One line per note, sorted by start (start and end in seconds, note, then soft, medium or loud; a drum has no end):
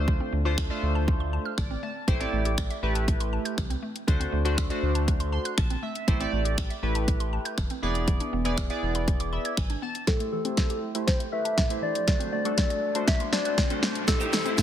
0.00 0.20 D2 loud
0.00 0.33 A3 medium
0.00 0.33 D4 medium
0.00 0.33 F4 medium
0.00 0.33 C5 loud
0.08 0.17 D3 medium
0.08 kick loud
0.20 0.29 C4 medium
0.33 0.70 D2 medium
0.33 0.42 A3 medium
0.45 0.65 A3 medium
0.45 0.65 D4 medium
0.45 0.54 F4 medium
0.45 0.65 F4 medium
0.45 0.65 C5 medium
0.58 finger snap loud
0.58 kick medium
0.70 1.50 A3 medium
0.70 1.50 D4 medium
0.70 1.50 F4 medium
0.70 1.50 C5 medium
0.70 0.79 D5 medium
0.83 1.38 D2 loud
0.95 1.04 A5 medium
1.08 kick loud
1.20 1.29 C6 medium
1.33 1.42 A5 medium
1.45 1.54 F6 medium
1.58 1.76 A1 medium
1.58 1.67 D3 medium
1.58 1.81 D5 medium
1.58 finger snap loud
1.58 kick loud
1.71 1.79 C4 medium
1.83 1.92 A3 medium
1.83 2.06 A5 medium
2.08 2.26 A1 loud
2.08 2.17 E3 medium
2.08 2.18 A3 medium
2.08 2.18 E4 medium
2.08 2.18 G4 medium
2.08 2.18 C5 loud
2.08 kick loud
2.08 closed hi-hat medium
2.20 2.70 A3 medium
2.20 2.29 C4 medium
2.20 2.70 E4 medium
2.20 2.70 G4 medium
2.20 2.70 D5 medium
2.20 closed hi-hat soft
2.33 2.70 A1 medium
2.33 2.42 A3 medium
2.45 2.54 G4 medium
2.45 closed hi-hat soft
2.58 finger snap loud
2.58 kick medium
2.58 closed hi-hat medium
2.70 2.79 E5 medium
2.70 closed hi-hat soft
2.83 3.38 A1 loud
2.83 3.62 A3 medium
2.83 3.63 E4 medium
2.83 3.63 G4 medium
2.83 3.63 B4 medium
2.95 3.04 A5 medium
2.95 closed hi-hat medium
3.08 kick loud
3.08 closed hi-hat medium
3.20 3.29 C6 medium
3.20 closed hi-hat soft
3.33 3.42 A5 medium
3.45 3.54 G6 medium
3.45 closed hi-hat soft
3.58 3.76 C2 medium
3.58 3.67 E3 medium
3.58 finger snap loud
3.58 kick loud
3.58 closed hi-hat medium
3.70 3.79 C4 medium
3.70 closed hi-hat soft
3.83 3.92 A3 medium
3.96 closed hi-hat soft
4.07 4.26 D2 loud
4.07 4.17 D3 medium
4.07 4.38 A3 medium
4.07 4.38 D4 medium
4.07 4.38 F#4 medium
4.07 4.38 C5 loud
4.07 kick loud
4.07 closed hi-hat medium
4.20 4.29 C4 medium
4.20 closed hi-hat soft
4.32 4.70 D2 medium
4.32 4.41 A3 medium
4.45 4.65 A3 medium
4.45 4.65 D4 medium
4.45 4.65 F#4 medium
4.45 4.54 F#4 medium
4.45 4.65 C5 medium
4.45 closed hi-hat soft
4.58 finger snap loud
4.58 kick medium
4.58 closed hi-hat medium
4.70 5.50 A3 medium
4.70 5.50 D4 medium
4.70 5.50 F#4 medium
4.70 5.50 C5 loud
4.70 4.79 D5 medium
4.70 closed hi-hat soft
4.83 5.38 D2 loud
4.95 5.04 A5 medium
4.95 closed hi-hat medium
5.08 kick loud
5.08 closed hi-hat medium
5.20 5.29 C6 medium
5.20 closed hi-hat soft
5.32 5.41 A5 medium
5.32 5.56 C6 medium
5.45 5.54 F#6 medium
5.45 closed hi-hat medium
5.58 5.76 A#1 medium
5.58 5.67 D3 medium
5.58 5.81 A5 medium
5.58 finger snap loud
5.58 kick loud
5.58 closed hi-hat medium
5.70 5.79 C4 medium
5.70 closed hi-hat soft
5.83 5.92 A3 medium
5.83 6.06 E5 medium
5.95 closed hi-hat soft
6.07 6.26 A1 loud
6.07 6.17 E3 medium
6.07 6.18 A3 medium
6.07 6.18 E4 medium
6.07 6.18 G4 medium
6.07 6.18 C5 loud
6.07 kick loud
6.07 closed hi-hat medium
6.20 6.70 A3 medium
6.20 6.29 C4 medium
6.20 6.70 E4 medium
6.20 6.70 G4 medium
6.20 6.70 D5 loud
6.20 closed hi-hat soft
6.33 6.70 A1 medium
6.33 6.42 A3 medium
6.45 6.54 G4 medium
6.45 closed hi-hat soft
6.58 finger snap loud
6.58 kick loud
6.58 closed hi-hat medium
6.70 6.79 E5 medium
6.70 closed hi-hat soft
6.83 7.38 A1 loud
6.83 7.63 A3 medium
6.83 7.63 E4 medium
6.83 7.63 G4 medium
6.83 7.63 B4 medium
6.95 7.04 A5 medium
6.95 closed hi-hat medium
7.08 kick loud
7.08 closed hi-hat medium
7.20 7.29 C6 medium
7.20 closed hi-hat soft
7.33 7.42 A5 medium
7.45 7.54 G6 medium
7.45 closed hi-hat soft
7.58 7.67 F1 medium
7.58 7.67 E3 medium
7.58 finger snap loud
7.58 kick loud
7.58 closed hi-hat medium
7.70 7.79 C4 medium
7.70 closed hi-hat soft
7.82 8.20 E1 loud
7.82 8.33 B3 medium
7.82 7.92 B3 medium
7.82 8.33 E4 medium
7.82 8.33 G#4 medium
7.82 8.33 D5 loud
7.95 closed hi-hat soft
8.08 8.17 E3 medium
8.08 kick loud
8.08 closed hi-hat medium
8.20 8.29 D4 medium
8.20 closed hi-hat soft
8.33 8.70 E1 medium
8.33 8.42 B3 medium
8.45 8.65 B3 medium
8.45 8.65 E4 medium
8.45 8.65 G#4 medium
8.45 8.54 G#4 medium
8.45 8.65 D5 medium
8.45 closed hi-hat soft
8.57 finger snap loud
8.57 kick medium
8.57 closed hi-hat medium
8.70 9.50 B3 medium
8.70 9.50 E4 medium
8.70 9.50 G#4 medium
8.70 9.50 D5 loud
8.70 8.79 E5 medium
8.70 closed hi-hat soft
8.83 9.38 E1 loud
8.95 9.04 B5 medium
8.95 closed hi-hat medium
9.08 kick loud
9.08 closed hi-hat medium
9.20 9.29 D6 medium
9.20 closed hi-hat soft
9.33 9.56 E5 medium
9.33 9.42 B5 medium
9.45 9.54 G#6 medium
9.45 closed hi-hat medium
9.57 9.76 G#1 medium
9.57 9.66 E3 medium
9.57 9.81 G#5 medium
9.57 finger snap loud
9.57 kick loud
9.57 closed hi-hat medium
9.70 9.79 D4 medium
9.70 closed hi-hat medium
9.82 9.91 B3 medium
9.82 10.06 A5 medium
9.95 closed hi-hat soft
10.07 10.16 A2 medium
10.07 10.38 A3 medium
10.07 10.38 E4 medium
10.07 10.38 G4 medium
10.07 10.31 A4 loud
10.07 10.38 C5 medium
10.07 kick loud
10.07 snare medium
10.07 closed hi-hat medium
10.07 riser medium
10.20 10.29 A3 medium
10.20 closed hi-hat soft
10.32 10.41 E3 medium
10.32 10.79 A4 loud
10.45 10.85 A3 medium
10.45 10.54 C4 medium
10.45 10.85 E4 medium
10.45 10.85 G4 medium
10.45 10.85 C5 medium
10.45 closed hi-hat soft
10.57 kick medium
10.57 snare medium
10.57 closed hi-hat medium
10.70 10.79 G4 medium
10.70 closed hi-hat soft
10.95 11.25 A3 medium
10.95 11.25 E4 medium
10.95 11.25 G4 medium
10.95 11.04 A4 medium
10.95 11.25 C5 medium
10.95 closed hi-hat medium
11.07 11.19 C5 loud
11.07 kick loud
11.07 snare medium
11.07 closed hi-hat medium
11.20 11.29 E5 medium
11.20 closed hi-hat soft
11.32 11.63 A3 medium
11.32 11.63 E4 medium
11.32 11.63 G4 medium
11.32 11.41 A4 medium
11.32 11.63 B4 medium
11.32 11.84 E5 loud
11.45 11.54 A5 medium
11.45 closed hi-hat medium
11.57 11.66 A2 medium
11.57 kick loud
11.57 snare medium
11.57 closed hi-hat medium
11.70 11.79 A3 medium
11.70 12.00 A3 medium
11.70 12.00 E4 medium
11.70 12.00 G4 medium
11.70 12.00 C5 medium
11.70 closed hi-hat medium
11.82 11.91 E3 medium
11.82 12.32 D5 loud
11.95 closed hi-hat soft
12.07 12.16 D3 medium
12.07 12.38 A3 medium
12.07 12.38 D4 medium
12.07 12.38 F#4 medium
12.07 12.38 C5 medium
12.07 kick loud
12.07 snare medium
12.07 closed hi-hat medium
12.20 12.29 C4 medium
12.20 closed hi-hat soft
12.32 12.41 A3 medium
12.32 13.04 D5 loud
12.45 12.85 A3 medium
12.45 12.85 D4 medium
12.45 12.54 F#4 medium
12.45 12.85 F#4 medium
12.45 12.85 A4 medium
12.45 closed hi-hat soft
12.58 kick medium
12.58 snare medium
12.58 closed hi-hat medium
12.70 12.79 D5 medium
12.70 closed hi-hat soft
12.95 13.25 A3 medium
12.95 13.25 D4 medium
12.95 13.25 F#4 medium
12.95 13.25 C5 medium
12.95 13.04 A5 medium
12.95 closed hi-hat medium
13.08 13.19 E5 loud
13.08 kick loud
13.08 snare medium
13.08 closed hi-hat medium
13.20 13.29 C6 medium
13.20 closed hi-hat medium
13.33 13.63 A3 medium
13.33 13.63 D4 medium
13.33 13.63 F#4 medium
13.33 13.63 C5 medium
13.33 13.79 D5 medium
13.33 13.42 A5 medium
13.33 snare medium
13.45 13.54 F#6 medium
13.45 closed hi-hat medium
13.58 13.67 D3 medium
13.58 kick loud
13.58 snare medium
13.58 closed hi-hat medium
13.70 14.00 A3 medium
13.70 13.79 C4 medium
13.70 14.00 D4 medium
13.70 14.00 F#4 medium
13.70 14.00 C5 medium
13.70 closed hi-hat medium
13.83 13.92 A3 medium
13.83 snare medium
13.95 closed hi-hat soft
14.07 14.17 A2 medium
14.07 14.38 A3 medium
14.07 14.38 E4 medium
14.07 14.38 G4 medium
14.07 14.31 A4 loud
14.07 14.38 C5 medium
14.07 muted clean electric guitar stroke soft
14.07 kick loud
14.07 snare loud
14.07 closed hi-hat medium
14.07 shaker medium
14.20 14.29 A3 medium
14.20 14.31 E4 medium
14.20 14.32 G4 medium
14.20 14.33 C5 medium
14.20 closed hi-hat soft
14.20 shaker medium
14.32 14.42 E3 medium
14.32 14.46 E4 medium
14.32 14.45 G4 medium
14.32 14.62 A4 loud
14.32 14.44 C5 medium
14.32 snare medium
14.32 open hi-hat medium
14.32 shaker medium
14.45 14.62 A3 medium
14.45 14.54 C4 medium
14.45 14.62 E4 medium
14.45 14.62 G4 medium
14.45 14.62 C5 medium
14.45 muted clean electric guitar stroke soft
14.45 closed hi-hat soft
14.45 shaker soft
14.57 muted clean electric guitar stroke soft
14.57 kick medium
14.57 snare loud
14.57 closed hi-hat medium
14.57 shaker medium